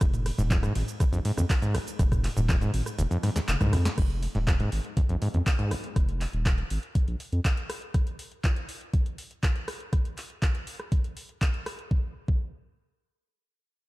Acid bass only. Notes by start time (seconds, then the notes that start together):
0.01 F2
0.38 G#2
0.51 F2
0.63 G#2
1.00 D#2
1.13 F2
1.25 G#2
1.37 D#2
1.62 G#2
1.75 F1
1.99 F2
2.37 G#2
2.49 F2
2.61 G#2
2.99 D#2
3.11 F2
3.23 G#2
3.36 D#2
3.61 G#2
3.73 F1
3.98 F2
4.35 G#2
4.47 F2
4.60 G#2
4.97 D#2
5.09 F2
5.22 G#2
5.34 D#2
5.59 G#2
5.71 F1